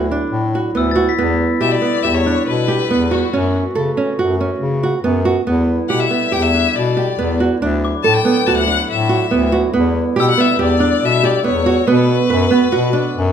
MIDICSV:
0, 0, Header, 1, 6, 480
1, 0, Start_track
1, 0, Tempo, 427655
1, 1326, Time_signature, 5, 2, 24, 8
1, 14954, End_track
2, 0, Start_track
2, 0, Title_t, "Glockenspiel"
2, 0, Program_c, 0, 9
2, 867, Note_on_c, 0, 88, 57
2, 1026, Note_on_c, 0, 93, 46
2, 1221, Note_on_c, 0, 95, 44
2, 1532, Note_off_c, 0, 88, 0
2, 1672, Note_off_c, 0, 93, 0
2, 1830, Note_off_c, 0, 95, 0
2, 8806, Note_on_c, 0, 86, 59
2, 10158, Note_off_c, 0, 86, 0
2, 11449, Note_on_c, 0, 88, 64
2, 12796, Note_off_c, 0, 88, 0
2, 14954, End_track
3, 0, Start_track
3, 0, Title_t, "Violin"
3, 0, Program_c, 1, 40
3, 1812, Note_on_c, 1, 76, 83
3, 1922, Note_on_c, 1, 74, 88
3, 1939, Note_off_c, 1, 76, 0
3, 2280, Note_on_c, 1, 76, 78
3, 2297, Note_off_c, 1, 74, 0
3, 2406, Note_on_c, 1, 73, 83
3, 2423, Note_off_c, 1, 76, 0
3, 2768, Note_off_c, 1, 73, 0
3, 2778, Note_on_c, 1, 71, 90
3, 3505, Note_on_c, 1, 66, 69
3, 3522, Note_off_c, 1, 71, 0
3, 3978, Note_off_c, 1, 66, 0
3, 6608, Note_on_c, 1, 78, 82
3, 6731, Note_on_c, 1, 76, 80
3, 6748, Note_off_c, 1, 78, 0
3, 7102, Note_on_c, 1, 79, 85
3, 7119, Note_off_c, 1, 76, 0
3, 7213, Note_on_c, 1, 76, 88
3, 7230, Note_off_c, 1, 79, 0
3, 7591, Note_on_c, 1, 74, 75
3, 7607, Note_off_c, 1, 76, 0
3, 8303, Note_off_c, 1, 74, 0
3, 9016, Note_on_c, 1, 81, 83
3, 9136, Note_on_c, 1, 79, 89
3, 9153, Note_off_c, 1, 81, 0
3, 9499, Note_on_c, 1, 81, 87
3, 9515, Note_off_c, 1, 79, 0
3, 9617, Note_off_c, 1, 81, 0
3, 9623, Note_on_c, 1, 78, 90
3, 9954, Note_off_c, 1, 78, 0
3, 9998, Note_on_c, 1, 76, 77
3, 10661, Note_off_c, 1, 76, 0
3, 11436, Note_on_c, 1, 79, 86
3, 11537, Note_off_c, 1, 79, 0
3, 11567, Note_on_c, 1, 78, 88
3, 11677, Note_on_c, 1, 76, 80
3, 11694, Note_off_c, 1, 78, 0
3, 11904, Note_off_c, 1, 76, 0
3, 11918, Note_on_c, 1, 74, 89
3, 12404, Note_on_c, 1, 76, 94
3, 12420, Note_off_c, 1, 74, 0
3, 12627, Note_on_c, 1, 74, 83
3, 12644, Note_off_c, 1, 76, 0
3, 12854, Note_off_c, 1, 74, 0
3, 12860, Note_on_c, 1, 73, 81
3, 13321, Note_on_c, 1, 71, 84
3, 13337, Note_off_c, 1, 73, 0
3, 14954, Note_off_c, 1, 71, 0
3, 14954, End_track
4, 0, Start_track
4, 0, Title_t, "Nylon-string guitar"
4, 0, Program_c, 2, 24
4, 128, Note_on_c, 2, 62, 58
4, 471, Note_off_c, 2, 62, 0
4, 616, Note_on_c, 2, 66, 66
4, 784, Note_off_c, 2, 66, 0
4, 840, Note_on_c, 2, 59, 67
4, 1014, Note_off_c, 2, 59, 0
4, 1073, Note_on_c, 2, 66, 69
4, 1249, Note_off_c, 2, 66, 0
4, 1329, Note_on_c, 2, 59, 74
4, 1672, Note_off_c, 2, 59, 0
4, 1803, Note_on_c, 2, 67, 68
4, 1976, Note_off_c, 2, 67, 0
4, 2037, Note_on_c, 2, 59, 64
4, 2212, Note_off_c, 2, 59, 0
4, 2297, Note_on_c, 2, 67, 70
4, 2465, Note_off_c, 2, 67, 0
4, 2538, Note_on_c, 2, 62, 63
4, 2878, Note_off_c, 2, 62, 0
4, 3010, Note_on_c, 2, 67, 65
4, 3181, Note_off_c, 2, 67, 0
4, 3259, Note_on_c, 2, 59, 65
4, 3428, Note_off_c, 2, 59, 0
4, 3491, Note_on_c, 2, 66, 68
4, 3663, Note_off_c, 2, 66, 0
4, 3742, Note_on_c, 2, 61, 76
4, 4081, Note_off_c, 2, 61, 0
4, 4213, Note_on_c, 2, 69, 71
4, 4384, Note_off_c, 2, 69, 0
4, 4459, Note_on_c, 2, 61, 69
4, 4628, Note_off_c, 2, 61, 0
4, 4702, Note_on_c, 2, 66, 66
4, 4870, Note_off_c, 2, 66, 0
4, 4945, Note_on_c, 2, 61, 63
4, 5284, Note_off_c, 2, 61, 0
4, 5425, Note_on_c, 2, 66, 68
4, 5593, Note_off_c, 2, 66, 0
4, 5656, Note_on_c, 2, 59, 68
4, 5827, Note_off_c, 2, 59, 0
4, 5895, Note_on_c, 2, 66, 67
4, 6066, Note_off_c, 2, 66, 0
4, 6137, Note_on_c, 2, 59, 69
4, 6480, Note_off_c, 2, 59, 0
4, 6620, Note_on_c, 2, 67, 68
4, 6790, Note_off_c, 2, 67, 0
4, 6852, Note_on_c, 2, 59, 69
4, 7025, Note_off_c, 2, 59, 0
4, 7093, Note_on_c, 2, 67, 69
4, 7265, Note_off_c, 2, 67, 0
4, 7340, Note_on_c, 2, 62, 62
4, 7682, Note_off_c, 2, 62, 0
4, 7821, Note_on_c, 2, 67, 67
4, 7990, Note_off_c, 2, 67, 0
4, 8065, Note_on_c, 2, 59, 68
4, 8233, Note_off_c, 2, 59, 0
4, 8308, Note_on_c, 2, 66, 70
4, 8476, Note_off_c, 2, 66, 0
4, 8553, Note_on_c, 2, 62, 75
4, 8890, Note_off_c, 2, 62, 0
4, 9027, Note_on_c, 2, 69, 74
4, 9195, Note_off_c, 2, 69, 0
4, 9259, Note_on_c, 2, 59, 74
4, 9429, Note_off_c, 2, 59, 0
4, 9512, Note_on_c, 2, 66, 72
4, 9677, Note_off_c, 2, 66, 0
4, 9736, Note_on_c, 2, 62, 65
4, 10079, Note_off_c, 2, 62, 0
4, 10206, Note_on_c, 2, 66, 71
4, 10380, Note_off_c, 2, 66, 0
4, 10450, Note_on_c, 2, 59, 75
4, 10623, Note_off_c, 2, 59, 0
4, 10688, Note_on_c, 2, 66, 76
4, 10861, Note_off_c, 2, 66, 0
4, 10927, Note_on_c, 2, 59, 82
4, 11272, Note_off_c, 2, 59, 0
4, 11405, Note_on_c, 2, 67, 81
4, 11579, Note_off_c, 2, 67, 0
4, 11646, Note_on_c, 2, 59, 71
4, 11820, Note_off_c, 2, 59, 0
4, 11886, Note_on_c, 2, 67, 73
4, 12060, Note_off_c, 2, 67, 0
4, 12121, Note_on_c, 2, 62, 69
4, 12467, Note_off_c, 2, 62, 0
4, 12610, Note_on_c, 2, 67, 70
4, 12781, Note_off_c, 2, 67, 0
4, 12843, Note_on_c, 2, 59, 70
4, 13016, Note_off_c, 2, 59, 0
4, 13088, Note_on_c, 2, 66, 77
4, 13259, Note_off_c, 2, 66, 0
4, 13327, Note_on_c, 2, 59, 84
4, 13670, Note_off_c, 2, 59, 0
4, 13806, Note_on_c, 2, 71, 77
4, 13978, Note_off_c, 2, 71, 0
4, 14037, Note_on_c, 2, 59, 76
4, 14211, Note_off_c, 2, 59, 0
4, 14279, Note_on_c, 2, 66, 72
4, 14453, Note_off_c, 2, 66, 0
4, 14513, Note_on_c, 2, 62, 71
4, 14860, Note_off_c, 2, 62, 0
4, 14954, End_track
5, 0, Start_track
5, 0, Title_t, "Woodwind section"
5, 0, Program_c, 3, 71
5, 0, Note_on_c, 3, 50, 62
5, 0, Note_on_c, 3, 54, 55
5, 0, Note_on_c, 3, 64, 71
5, 1304, Note_off_c, 3, 50, 0
5, 1306, Note_off_c, 3, 54, 0
5, 1330, Note_on_c, 3, 50, 65
5, 1339, Note_on_c, 3, 55, 60
5, 3690, Note_off_c, 3, 64, 0
5, 3708, Note_off_c, 3, 50, 0
5, 3713, Note_off_c, 3, 55, 0
5, 3734, Note_on_c, 3, 52, 66
5, 3739, Note_on_c, 3, 57, 60
5, 3739, Note_on_c, 3, 66, 72
5, 5946, Note_off_c, 3, 52, 0
5, 5946, Note_off_c, 3, 57, 0
5, 5946, Note_off_c, 3, 66, 0
5, 6137, Note_on_c, 3, 64, 67
5, 6138, Note_on_c, 3, 50, 63
5, 6142, Note_on_c, 3, 55, 55
5, 8513, Note_off_c, 3, 64, 0
5, 8516, Note_off_c, 3, 55, 0
5, 8541, Note_on_c, 3, 64, 71
5, 8548, Note_on_c, 3, 54, 62
5, 10916, Note_off_c, 3, 54, 0
5, 10937, Note_on_c, 3, 55, 63
5, 13286, Note_off_c, 3, 64, 0
5, 13306, Note_off_c, 3, 55, 0
5, 13349, Note_on_c, 3, 66, 77
5, 13352, Note_on_c, 3, 59, 68
5, 14954, Note_off_c, 3, 50, 0
5, 14954, Note_off_c, 3, 59, 0
5, 14954, Note_off_c, 3, 66, 0
5, 14954, End_track
6, 0, Start_track
6, 0, Title_t, "Bass clarinet"
6, 0, Program_c, 4, 71
6, 0, Note_on_c, 4, 38, 73
6, 260, Note_off_c, 4, 38, 0
6, 348, Note_on_c, 4, 45, 77
6, 737, Note_off_c, 4, 45, 0
6, 832, Note_on_c, 4, 38, 79
6, 1220, Note_off_c, 4, 38, 0
6, 1315, Note_on_c, 4, 40, 83
6, 1702, Note_off_c, 4, 40, 0
6, 1800, Note_on_c, 4, 47, 80
6, 1994, Note_off_c, 4, 47, 0
6, 2278, Note_on_c, 4, 40, 77
6, 2664, Note_off_c, 4, 40, 0
6, 2760, Note_on_c, 4, 47, 80
6, 3146, Note_off_c, 4, 47, 0
6, 3245, Note_on_c, 4, 40, 75
6, 3629, Note_off_c, 4, 40, 0
6, 3727, Note_on_c, 4, 42, 78
6, 4111, Note_off_c, 4, 42, 0
6, 4203, Note_on_c, 4, 49, 75
6, 4397, Note_off_c, 4, 49, 0
6, 4680, Note_on_c, 4, 42, 75
6, 5067, Note_off_c, 4, 42, 0
6, 5160, Note_on_c, 4, 49, 75
6, 5548, Note_off_c, 4, 49, 0
6, 5639, Note_on_c, 4, 42, 74
6, 6027, Note_off_c, 4, 42, 0
6, 6121, Note_on_c, 4, 40, 82
6, 6508, Note_off_c, 4, 40, 0
6, 6616, Note_on_c, 4, 47, 75
6, 6807, Note_off_c, 4, 47, 0
6, 7101, Note_on_c, 4, 40, 79
6, 7481, Note_off_c, 4, 40, 0
6, 7572, Note_on_c, 4, 47, 84
6, 7955, Note_off_c, 4, 47, 0
6, 8052, Note_on_c, 4, 40, 78
6, 8435, Note_off_c, 4, 40, 0
6, 8545, Note_on_c, 4, 38, 82
6, 8923, Note_off_c, 4, 38, 0
6, 9024, Note_on_c, 4, 45, 77
6, 9211, Note_off_c, 4, 45, 0
6, 9505, Note_on_c, 4, 38, 74
6, 9883, Note_off_c, 4, 38, 0
6, 9975, Note_on_c, 4, 45, 84
6, 10357, Note_off_c, 4, 45, 0
6, 10460, Note_on_c, 4, 38, 80
6, 10839, Note_off_c, 4, 38, 0
6, 10939, Note_on_c, 4, 40, 83
6, 11318, Note_off_c, 4, 40, 0
6, 11419, Note_on_c, 4, 47, 84
6, 11607, Note_off_c, 4, 47, 0
6, 11886, Note_on_c, 4, 40, 82
6, 12269, Note_off_c, 4, 40, 0
6, 12369, Note_on_c, 4, 47, 83
6, 12751, Note_off_c, 4, 47, 0
6, 12869, Note_on_c, 4, 40, 78
6, 13242, Note_off_c, 4, 40, 0
6, 13332, Note_on_c, 4, 47, 86
6, 13711, Note_off_c, 4, 47, 0
6, 13812, Note_on_c, 4, 42, 86
6, 14000, Note_off_c, 4, 42, 0
6, 14290, Note_on_c, 4, 47, 83
6, 14669, Note_off_c, 4, 47, 0
6, 14772, Note_on_c, 4, 42, 86
6, 14954, Note_off_c, 4, 42, 0
6, 14954, End_track
0, 0, End_of_file